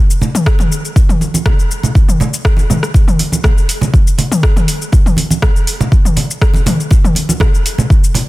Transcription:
0.10 shaker
0.21 muted conga, low conga, shaker
0.35 mid tom, shaker
0.46 kick, cross-stick, shaker
0.59 mid tom, muted conga, shaker
0.72 shaker
0.85 shaker
0.96 kick, muted conga, shaker
1.09 mid tom, shaker
1.21 high conga, shaker
1.34 high conga, shaker
1.46 kick, cross-stick, muted conga, low conga, shaker
1.59 shaker
1.71 shaker
1.83 muted conga, low conga, shaker
1.95 kick, high conga, shaker
2.09 mid tom, shaker
2.20 muted conga, low conga, shaker
2.34 shaker
2.45 kick, cross-stick
2.57 muted conga, high conga, shaker
2.70 mid tom, low conga, shaker
2.83 cross-stick, shaker
2.94 kick, muted conga, shaker
3.08 mid tom, shaker
3.19 open hi-hat, high conga, shaker
3.32 high conga, shaker
3.43 kick, cross-stick, muted conga, low conga, shaker
3.58 shaker
3.69 open hi-hat, shaker
3.81 muted conga, low conga, shaker
3.94 kick, high conga, shaker
4.07 shaker
4.18 open hi-hat, muted conga, low conga, shaker
4.32 mid tom, shaker
4.43 kick, cross-stick, shaker
4.56 mid tom, muted conga, shaker
4.68 open hi-hat, shaker
4.82 shaker
4.92 kick, muted conga, shaker
5.06 mid tom, shaker
5.17 open hi-hat, high conga, shaker
5.30 high conga, shaker
5.42 kick, cross-stick, muted conga, low conga, shaker
5.56 shaker
5.67 open hi-hat, shaker
5.81 muted conga, low conga, shaker
5.92 kick, high conga, shaker
6.05 mid tom, shaker
6.17 open hi-hat, muted conga, low conga, shaker
6.31 shaker
6.42 kick, cross-stick, shaker
6.54 muted conga, high conga, shaker
6.66 open hi-hat, mid tom, low conga, shaker
6.80 shaker
6.91 kick, muted conga, shaker
7.04 mid tom, shaker
7.15 open hi-hat, high conga, shaker
7.29 high conga, shaker
7.40 kick, cross-stick, muted conga, low conga, shaker
7.55 shaker
7.66 open hi-hat, shaker
7.78 muted conga, low conga, shaker
7.90 kick, high conga, shaker
8.04 shaker
8.14 open hi-hat, muted conga, low conga, shaker

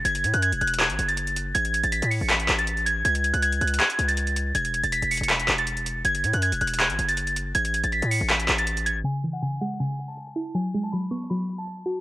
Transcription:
0.05 F#1 G#6, closed hi-hat
0.15 closed hi-hat
0.24 A2, closed hi-hat
0.34 F#2 F#6, closed hi-hat
0.42 G#6, closed hi-hat
0.52 E1, closed hi-hat
0.61 E1 F#6, closed hi-hat
0.67 closed hi-hat
0.74 closed hi-hat
0.80 G#6, clap, closed hi-hat
0.90 G#1, closed hi-hat
0.99 F#1, closed hi-hat
1.08 A6, closed hi-hat
1.17 closed hi-hat
1.27 closed hi-hat
1.36 closed hi-hat
1.55 A1 G#6, closed hi-hat
1.65 closed hi-hat
1.74 closed hi-hat
1.84 A1 A6, closed hi-hat
1.92 B6, closed hi-hat
2.02 A2, closed hi-hat
2.11 C#7, open hi-hat
2.21 A1
2.30 B6, clap, closed hi-hat
2.40 closed hi-hat
2.49 A1, clap, closed hi-hat
2.59 A6, closed hi-hat
2.67 closed hi-hat
2.77 closed hi-hat
2.86 G#6, closed hi-hat
3.05 C#2 G#6, closed hi-hat
3.15 closed hi-hat
3.24 closed hi-hat
3.33 C#2 F#6, closed hi-hat
3.42 G#6, closed hi-hat
3.52 closed hi-hat
3.61 C#2 F#6, closed hi-hat
3.67 closed hi-hat
3.74 closed hi-hat
3.80 G#6, clap, closed hi-hat
3.90 closed hi-hat
3.99 C#2, closed hi-hat
4.08 A6, closed hi-hat
4.17 closed hi-hat
4.27 closed hi-hat
4.36 closed hi-hat
4.55 E1 G#6, closed hi-hat
4.65 closed hi-hat
4.74 closed hi-hat
4.83 E1 A6, closed hi-hat
4.92 B6, closed hi-hat
5.02 E1, closed hi-hat
5.11 C#7, closed hi-hat, open hi-hat
5.17 E1, closed hi-hat
5.23 closed hi-hat
5.30 B6, clap
5.40 closed hi-hat
5.48 E1, clap, closed hi-hat
5.58 A6, closed hi-hat
5.67 closed hi-hat
5.77 closed hi-hat
5.86 closed hi-hat
6.05 F#1 G#6, closed hi-hat
6.15 closed hi-hat
6.24 A2, closed hi-hat
6.33 F#2 F#6, closed hi-hat
6.42 G#6, closed hi-hat
6.52 E1, closed hi-hat
6.61 E1 F#6, closed hi-hat
6.67 closed hi-hat
6.74 closed hi-hat
6.80 G#6, clap, closed hi-hat
6.90 G#1, closed hi-hat
6.99 F#1, closed hi-hat
7.08 A6, closed hi-hat
7.17 closed hi-hat
7.27 closed hi-hat
7.36 closed hi-hat
7.55 A1 G#6, closed hi-hat
7.65 closed hi-hat
7.74 closed hi-hat
7.84 A1 A6, closed hi-hat
7.92 B6, closed hi-hat
8.02 A2, closed hi-hat
8.11 C#7, open hi-hat
8.21 A1
8.30 B6, clap, closed hi-hat
8.40 closed hi-hat
8.48 A1, clap, closed hi-hat
8.58 A6, closed hi-hat
8.67 closed hi-hat
8.77 closed hi-hat
8.86 G#6, closed hi-hat
9.04 C#3 G#5, closed hi-hat
9.15 closed hi-hat
9.24 E3, closed hi-hat
9.33 F#5, closed hi-hat
9.42 C#3 G#5, closed hi-hat
9.52 closed hi-hat
9.61 G#3 F#5, closed hi-hat
9.67 closed hi-hat
9.74 closed hi-hat
9.80 C#3 G#5, closed hi-hat
9.90 closed hi-hat
9.99 closed hi-hat
10.08 A5, closed hi-hat
10.17 closed hi-hat
10.27 closed hi-hat
10.36 E4, closed hi-hat
10.54 F#3 G#5, closed hi-hat
10.65 closed hi-hat
10.74 G#3, closed hi-hat
10.83 A5, closed hi-hat
10.92 F#3 B5, closed hi-hat
11.02 closed hi-hat
11.11 B3 C#6, closed hi-hat
11.17 closed hi-hat
11.24 closed hi-hat
11.30 F#3 B5, closed hi-hat
11.40 closed hi-hat
11.49 closed hi-hat
11.58 A5, closed hi-hat
11.67 closed hi-hat
11.77 closed hi-hat
11.86 F#4, closed hi-hat

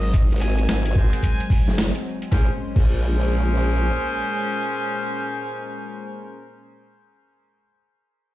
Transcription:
Already playing: G#1 F#3 G#3 C4
0.03 D#5
0.14 kick, closed hi-hat
0.31 G#1, closed hi-hat
0.33 closed hi-hat
0.36 closed hi-hat
0.38 closed hi-hat
0.40 G#5, cross-stick, closed hi-hat, open hi-hat
0.57 G#5, closed hi-hat
0.69 G#1, snare, closed hi-hat
0.86 closed hi-hat
0.95 F#4 G#4 A#4 C5, kick
1.13 closed hi-hat
1.23 G#5, kick, closed hi-hat
1.40 closed hi-hat
1.50 kick, open hi-hat
1.68 F#1, snare
1.78 snare, closed hi-hat
1.95 closed hi-hat
2.22 closed hi-hat
2.32 A#1 A#2 G#3 C#4 G#4 A#4 C5, kick, snare
2.76 A#1 C#4 G#4 A#4 C5, kick, crash

